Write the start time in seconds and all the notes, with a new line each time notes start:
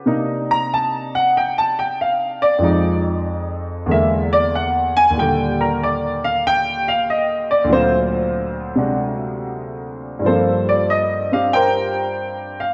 0.06 C3 A#3 D4 D#4
0.51 A#5
0.74 A5
1.15 F#5
1.37 G5
1.58 A5
1.79 G5
2.01 F5
2.42 D5
2.58 F2 F3 G#3
2.64 D#4
3.86 E2 D3 G#3
3.91 A#3 E5
4.33 D5
4.55 F#5
4.97 G#5
5.10 D#2 A#2
5.17 D3 G3 G5
5.61 A#4
5.83 D5
6.24 F5
6.47 G5
6.88 F5
7.10 D#5
7.51 D5
7.64 D2 A#2
7.70 F#3 C4 C5
7.75 F4
8.75 C3 G#3 D4 F#4
10.19 G2 G3
10.24 F3 A#3 F4 A4 C5
10.28 C4 F4
10.69 D5
10.90 D#5
11.32 C4 D4 G4 F5
11.53 A#4 C5 G5
12.60 F5